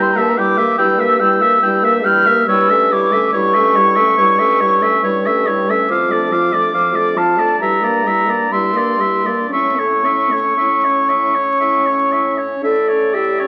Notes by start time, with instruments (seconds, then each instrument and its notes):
Already playing: bassoon G2, french horn G3, clarinet E4, oboe G5
0.02 flute C6
0.13 flute A#5
0.17 french horn A#3, clarinet G4, oboe E5, flute A5
0.29 flute A#5
0.38 french horn G3, clarinet E4, oboe G5, flute D6
0.58 french horn A#3, clarinet G4, oboe E5
0.78 bassoon G2, french horn G3, clarinet E4, oboe G5, flute E6
0.99 french horn A#3, clarinet G4, oboe E5
1.20 french horn G3, clarinet E4, oboe G5
1.41 french horn A#3, clarinet G4, oboe E5
1.62 bassoon G2, french horn G3, clarinet E4, oboe G5
1.83 french horn A#3, clarinet G4, oboe E5
2.04 french horn G3, clarinet E4, oboe G5, flute F6
2.27 french horn A#3, clarinet G4, oboe E5
2.47 bassoon G2, french horn G3, clarinet E4, oboe C#5, flute E6
2.70 french horn A3, clarinet C#4, oboe E5
2.91 french horn G3, clarinet E4, oboe C#5, flute D6
3.12 french horn A3, clarinet C#4, oboe E5
3.28 flute D6
3.33 bassoon G2, french horn G3, clarinet E4, oboe C#5, flute C#6
3.54 french horn A3, clarinet C#4, oboe E5
3.76 french horn G3, clarinet E4, oboe C#5
3.96 french horn A3, clarinet C#4, oboe E5
4.17 bassoon G2, french horn G3, clarinet E4, oboe C#5
4.39 french horn A3, clarinet C#4, oboe E5
4.60 french horn G3, clarinet E4, oboe C#5
4.82 french horn A3, clarinet C#4, oboe E5
5.03 bassoon G2, french horn G3, clarinet E4, oboe C#5
5.26 french horn A3, clarinet C#4, oboe E5
5.47 french horn G3, clarinet E4, oboe C#5
5.69 french horn A3, clarinet C#4, oboe E5
5.88 bassoon F2, french horn F3, clarinet F4, oboe F5, flute D6
6.10 french horn A3, clarinet D4, oboe D5
6.32 french horn F3, clarinet F4, oboe F5
6.53 french horn A3, clarinet D4, oboe D5
6.74 bassoon F2, french horn F3, clarinet F4, oboe F5
6.95 french horn A3, clarinet D4, oboe D5
7.16 french horn F3, clarinet F4, oboe F5, flute A5
7.38 french horn A3, clarinet D4, oboe D5
7.60 bassoon G2, french horn G3, clarinet E4, oboe E5, flute A#5
7.83 french horn A#3, clarinet D4, oboe D5
8.05 french horn G3, clarinet E4, oboe E5
8.28 french horn A#3, clarinet D4, oboe D5
8.51 bassoon G2, french horn G3, clarinet E4, oboe E5, flute C6
8.74 french horn A#3, oboe D5
8.78 clarinet D4
8.99 french horn G3, clarinet E4, oboe E5
9.24 french horn A#3, clarinet D4, oboe D5
9.49 bassoon A2, french horn C#4, clarinet E4, oboe E5, flute C#6
9.77 french horn A3, clarinet C#4, oboe C#5
10.04 french horn C#4, clarinet E4, oboe E5
10.30 french horn A3, clarinet C#4, oboe C#5
10.57 bassoon A2, french horn C#4, clarinet E4, oboe E5
10.85 clarinet C#4, oboe C#5
11.09 clarinet E4, oboe E5
11.35 clarinet C#4, oboe C#5
11.61 bassoon A2, clarinet E4, oboe E5
11.87 clarinet C#4, oboe C#5
12.12 clarinet E4, oboe E5
12.38 clarinet C#4, oboe C#5
12.63 bassoon A2, clarinet E4, french horn A4, flute D5, oboe E5
12.89 clarinet C#4, oboe C#5
13.14 clarinet E4, french horn G4, oboe E5
13.40 clarinet C#4, oboe C#5